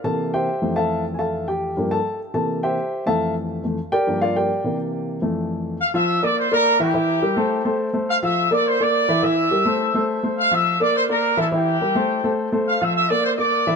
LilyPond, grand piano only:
<<
  \new Staff \with { instrumentName = "Grand piano" } { \time 4/4 \key f \major \tempo 4 = 209 <a' a''>4 <g' c'' e'' g''>4. <a' e'' f'' a''>4 r8 | <a' e'' f'' aes'' a''>4 <g' g''>4. <a' a''>4 r8 | <a' a''>4 <g' c'' e'' g''>4. <a' e'' f'' a''>4 r8 | r4. <g' bes' d'' g''>4 <f' bes' d'' f''>8 <g' bes' d'' g''>4~ |
<g' bes' d'' g''>8 r2. r8 | r8 <f f' f''>4 <bes bes' d''>4 <bes bes' d''>4 <e e' e''>8 | <e e' e''>4 <g g' bes'>8 <a a' c''>4 <a a' c''>4 <a a' c''>8~ | <a a' c''>8 <f f' f''>4 <bes bes' d''>4 <bes bes' d''>4 <e e' e''>8 |
<e e' e''>4 <g g' bes'>8 <a a' c''>4 <a a' c''>4 <a a' c''>8~ | <a a' c''>8 <f f' f''>4 <bes bes' d''>4 <bes bes' d''>4 <e e' e''>8 | <e e' e''>4 <g g' bes'>8 <a a' c''>4 <a a' c''>4 <a a' c''>8~ | <a a' c''>8 <f f' f''>4 <bes bes' d''>4 <bes bes' d''>4 <e e' e''>8 | }
  \new Staff \with { instrumentName = "Grand piano" } { \clef bass \time 4/4 \key f \major <c e bes>4. r8 <f, e a>2~ | <f, e a>2 <g, f bes>8 r4. | <c e bes>4. r4 <f, e a>4.~ | <f, e a>8 <f, e a>8 r4 <g, f bes>4. r8 |
<c e bes>2 <f, e a>2 | r1 | r1 | r1 |
r1 | r1 | r1 | r1 | }
>>